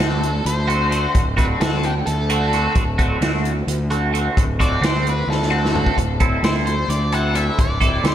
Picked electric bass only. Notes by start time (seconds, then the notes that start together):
0.00 D2
0.45 D2
1.15 D1
1.61 D2
2.07 D2
2.76 D1
3.21 D2
3.67 D2
4.37 D1
4.81 D2
5.27 D2
5.97 D1
6.43 D2
6.88 D2
7.59 D1
8.04 D2